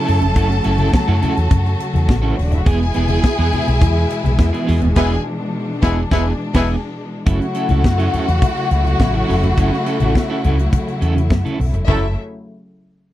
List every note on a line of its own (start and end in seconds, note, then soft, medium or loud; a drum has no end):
0.00 2.62 C#3 medium
0.00 2.62 F#3 medium
0.00 2.62 A3 medium
0.00 0.32 E4 medium
0.00 2.13 A4 loud
0.00 2.13 A5 loud
0.06 0.19 F#2 loud
0.06 0.25 C#4 medium
0.06 0.20 E4 loud
0.06 0.20 A4 medium
0.06 open hi-hat medium
0.06 muted conga soft
0.21 0.36 F1 loud
0.21 muted clean electric guitar stroke soft
0.21 closed hi-hat medium
0.21 low conga medium
0.35 0.59 F#1 loud
0.35 0.54 C#4 medium
0.35 0.49 E4 medium
0.35 2.64 F#4 medium
0.35 0.49 A4 medium
0.35 kick loud
0.35 closed hi-hat medium
0.35 muted conga soft
0.50 muted clean electric guitar stroke medium
0.50 snare soft
0.50 closed hi-hat soft
0.64 0.88 F#1 medium
0.64 0.79 C#4 medium
0.64 0.78 E4 medium
0.64 0.78 A4 medium
0.64 closed hi-hat medium
0.64 muted conga soft
0.78 0.92 C#4 medium
0.78 0.92 E4 medium
0.78 0.93 A4 medium
0.78 closed hi-hat soft
0.78 high conga medium
0.93 kick loud
0.93 snare loud
1.08 1.19 F#2 loud
1.08 1.21 C#4 medium
1.08 1.21 E4 loud
1.08 1.22 A4 loud
1.22 1.37 C#4 medium
1.22 1.36 E4 medium
1.22 1.35 A4 medium
1.22 closed hi-hat medium
1.22 muted conga soft
1.22 high conga medium
1.22 low conga medium
1.36 1.48 E2 medium
1.36 muted clean electric guitar stroke medium
1.36 closed hi-hat medium
1.51 1.74 F#2 loud
1.51 muted clean electric guitar stroke medium
1.51 kick loud
1.51 closed hi-hat loud
1.51 muted conga soft
1.51 high conga medium
1.66 muted clean electric guitar stroke soft
1.66 closed hi-hat soft
1.80 closed hi-hat medium
1.80 muted conga soft
1.94 2.06 E2 medium
1.94 muted clean electric guitar stroke medium
1.94 closed hi-hat soft
1.94 high conga medium
2.08 2.31 A1 loud
2.08 muted clean electric guitar stroke soft
2.08 kick loud
2.08 snare loud
2.22 2.30 A3 medium
2.22 2.35 C#4 medium
2.22 2.36 E4 medium
2.22 2.36 A4 loud
2.22 2.30 A4 medium
2.30 2.37 B3 medium
2.30 2.37 B4 medium
2.36 2.60 D#1 medium
2.36 2.45 C#4 medium
2.36 2.44 C#5 medium
2.36 muted clean electric guitar stroke soft
2.36 open hi-hat medium
2.44 2.52 D4 medium
2.44 2.52 D5 medium
2.51 2.59 E4 medium
2.51 2.59 E5 medium
2.51 muted clean electric guitar stroke medium
2.51 closed hi-hat medium
2.51 low conga medium
2.59 2.66 F#4 medium
2.59 2.66 F#5 medium
2.66 2.89 E1 loud
2.66 7.23 B2 medium
2.66 7.23 E3 medium
2.66 7.23 G#3 medium
2.66 2.85 B3 medium
2.66 4.94 E4 loud
2.66 2.80 E4 medium
2.66 4.92 G#4 loud
2.66 2.79 G#4 medium
2.66 4.93 G#5 loud
2.66 kick loud
2.66 closed hi-hat medium
2.80 muted clean electric guitar stroke medium
2.80 snare soft
2.94 3.18 E1 loud
2.94 3.10 B3 medium
2.94 3.09 E4 medium
2.94 3.08 G#4 medium
2.94 closed hi-hat medium
2.94 muted conga soft
3.08 3.23 B3 medium
3.08 3.23 E4 medium
3.08 3.23 G#4 medium
3.08 closed hi-hat soft
3.08 high conga medium
3.24 muted clean electric guitar stroke soft
3.24 kick loud
3.24 snare loud
3.24 muted conga soft
3.38 3.50 E2 medium
3.38 3.51 B3 medium
3.38 3.52 E4 medium
3.38 3.53 G#4 medium
3.52 3.67 B3 medium
3.52 3.67 E4 medium
3.52 3.66 G#4 medium
3.52 closed hi-hat medium
3.52 high conga medium
3.52 low conga medium
3.68 3.79 B1 medium
3.68 muted clean electric guitar stroke soft
3.68 closed hi-hat medium
3.81 4.04 E2 loud
3.81 muted clean electric guitar stroke medium
3.81 kick loud
3.81 closed hi-hat medium
3.81 high conga medium
3.96 muted clean electric guitar stroke medium
4.10 closed hi-hat medium
4.10 muted conga soft
4.24 4.36 B1 loud
4.24 muted clean electric guitar stroke soft
4.24 closed hi-hat soft
4.24 high conga medium
4.39 4.50 E2 loud
4.39 muted clean electric guitar stroke soft
4.39 kick loud
4.39 snare loud
4.53 4.66 B3 medium
4.53 4.67 E4 medium
4.53 4.67 G#4 medium
4.53 closed hi-hat soft
4.67 4.79 E2 loud
4.67 4.86 B3 medium
4.67 4.81 E4 medium
4.67 4.81 G#4 loud
4.67 open hi-hat medium
4.81 4.94 D#1 medium
4.81 muted clean electric guitar stroke medium
4.81 closed hi-hat medium
4.81 low conga medium
4.96 5.16 E1 loud
4.96 5.11 G#3 loud
4.96 5.16 B3 loud
4.96 5.11 B3 loud
4.96 7.25 D4 medium
4.96 5.11 E4 loud
4.96 5.16 E4 medium
4.96 5.16 G#4 loud
4.96 5.17 G#4 loud
4.96 5.11 B4 loud
4.96 5.16 G#5 loud
4.96 kick loud
4.96 snare loud
4.96 crash medium
5.82 6.02 E1 loud
5.82 5.98 G#3 loud
5.82 6.02 B3 loud
5.82 5.97 B3 loud
5.82 5.98 E4 loud
5.82 6.03 E4 loud
5.82 6.02 G#4 loud
5.82 6.03 G#4 loud
5.82 5.97 B4 loud
5.82 6.02 G#5 loud
5.82 kick loud
5.82 snare loud
6.11 6.31 E1 loud
6.11 6.26 G#3 loud
6.11 6.26 B3 loud
6.11 6.31 B3 loud
6.11 6.26 E4 loud
6.11 6.32 E4 loud
6.11 6.31 G#4 loud
6.11 6.32 G#4 loud
6.11 6.26 B4 loud
6.11 6.31 G#5 loud
6.11 kick loud
6.11 snare loud
6.54 6.74 E1 loud
6.54 6.69 G#3 loud
6.54 6.69 B3 loud
6.54 6.75 B3 loud
6.54 6.69 E4 loud
6.54 6.75 E4 loud
6.54 6.74 G#4 loud
6.54 6.69 B4 loud
6.54 6.74 G#5 medium
6.54 kick loud
6.54 snare loud
6.54 crash medium
7.26 7.38 F#1 loud
7.26 11.84 C#3 medium
7.26 11.84 F#3 medium
7.26 11.84 A3 medium
7.26 7.45 C#4 medium
7.26 11.84 E4 medium
7.26 7.40 E4 medium
7.26 11.55 F#4 loud
7.26 7.39 A4 medium
7.26 11.55 F#5 loud
7.26 kick loud
7.26 closed hi-hat medium
7.26 muted conga soft
7.40 muted clean electric guitar stroke soft
7.40 closed hi-hat soft
7.54 7.69 C#4 medium
7.54 7.69 E4 medium
7.54 7.69 A4 medium
7.54 closed hi-hat medium
7.69 7.82 C#2 loud
7.69 7.82 C#4 medium
7.69 7.83 E4 medium
7.69 7.83 A4 medium
7.69 closed hi-hat soft
7.69 high conga loud
7.83 8.07 F#2 medium
7.83 muted clean electric guitar stroke soft
7.83 kick loud
7.83 snare loud
7.98 8.11 C#4 medium
7.98 8.12 E4 medium
7.98 8.12 A4 medium
7.98 closed hi-hat soft
8.12 8.28 C#4 medium
8.12 8.26 E4 medium
8.12 8.26 A4 medium
8.12 closed hi-hat medium
8.12 high conga medium
8.12 low conga medium
8.27 8.39 E2 medium
8.27 muted clean electric guitar stroke soft
8.27 closed hi-hat medium
8.42 muted clean electric guitar stroke medium
8.42 kick loud
8.42 closed hi-hat medium
8.42 muted conga soft
8.42 high conga medium
8.56 muted clean electric guitar stroke medium
8.56 closed hi-hat soft
8.71 8.94 C#2 loud
8.71 closed hi-hat medium
8.71 muted conga soft
8.85 muted clean electric guitar stroke soft
8.85 closed hi-hat soft
8.85 high conga medium
9.00 9.22 A1 loud
9.00 muted clean electric guitar stroke soft
9.00 kick loud
9.00 snare loud
9.14 9.27 C#4 medium
9.14 9.28 E4 medium
9.14 9.28 A4 medium
9.14 high conga medium
9.28 9.51 F1 medium
9.28 9.47 C#4 medium
9.28 9.43 E4 medium
9.28 9.42 A4 medium
9.28 open hi-hat medium
9.28 low conga medium
9.43 muted clean electric guitar stroke soft
9.43 closed hi-hat medium
9.43 low conga medium
9.57 9.69 F#1 loud
9.57 9.76 C#4 medium
9.57 9.71 E4 loud
9.57 9.71 A4 loud
9.57 kick loud
9.57 closed hi-hat medium
9.72 muted clean electric guitar stroke medium
9.72 snare soft
9.86 10.00 C#4 medium
9.86 10.00 E4 medium
9.86 10.00 A4 medium
9.86 closed hi-hat medium
10.00 10.12 A1 medium
10.00 10.14 C#4 medium
10.00 10.15 E4 medium
10.00 10.15 A4 medium
10.00 closed hi-hat soft
10.00 high conga medium
10.15 muted clean electric guitar stroke soft
10.15 kick medium
10.15 snare loud
10.30 10.44 C#4 medium
10.30 10.44 E4 medium
10.30 10.45 A4 medium
10.44 10.67 C#2 medium
10.44 10.59 C#4 medium
10.44 10.59 E4 medium
10.44 10.57 A4 medium
10.44 closed hi-hat medium
10.44 muted conga soft
10.44 high conga medium
10.44 low conga medium
10.59 muted clean electric guitar stroke soft
10.59 closed hi-hat soft
10.73 kick loud
10.73 closed hi-hat medium
10.73 muted conga soft
10.73 high conga medium
10.87 muted clean electric guitar stroke medium
10.87 closed hi-hat soft
11.01 11.31 E2 medium
11.01 11.20 C#4 medium
11.01 11.15 E4 medium
11.01 11.15 A4 medium
11.01 closed hi-hat medium
11.16 muted clean electric guitar stroke soft
11.16 closed hi-hat soft
11.16 high conga medium
11.30 11.42 F#2 medium
11.30 muted clean electric guitar stroke soft
11.30 kick loud
11.30 snare loud
11.45 11.58 C#4 medium
11.45 11.59 E4 medium
11.45 11.59 A4 medium
11.45 closed hi-hat soft
11.45 high conga medium
11.59 11.70 B1 loud
11.59 muted clean electric guitar stroke soft
11.59 open hi-hat medium
11.59 muted conga soft
11.59 low conga medium
11.73 11.85 F1 medium
11.73 muted clean electric guitar stroke soft
11.73 closed hi-hat soft
11.73 low conga medium
11.87 12.15 F#1 medium
11.87 12.15 C#3 medium
11.87 12.14 F#3 medium
11.87 12.08 F#3 medium
11.87 12.14 A3 medium
11.87 12.08 A3 medium
11.87 12.14 C#4 loud
11.87 12.05 C#4 medium
11.87 12.14 E4 medium
11.87 12.08 E4 medium
11.87 12.05 E4 medium
11.87 12.14 A4 medium
11.87 12.08 A4 loud
11.87 12.06 A4 medium
11.87 12.14 E5 loud
11.87 kick medium
11.87 floor tom loud
11.87 high conga medium